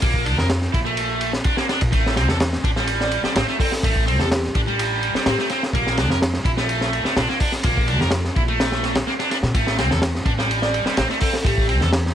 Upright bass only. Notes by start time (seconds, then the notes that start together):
0.02 A#1
0.38 F2
0.74 A#1
1.82 A#2
1.92 A1
2.29 E2
2.64 A1
3.24 muted upright bass stroke
3.35 A1
3.83 A1
4.19 E2
4.55 A1
5.15 muted upright bass stroke
5.26 A1
5.73 A#1
6.10 F2
6.45 A#1
7.05 muted upright bass stroke
7.16 A#1
7.64 A#1
8.00 F2
8.36 A#1
9.43 A#2
9.55 A1
9.91 E2
10.26 A1
10.86 muted upright bass stroke
10.97 A1
11.45 A1
11.81 E2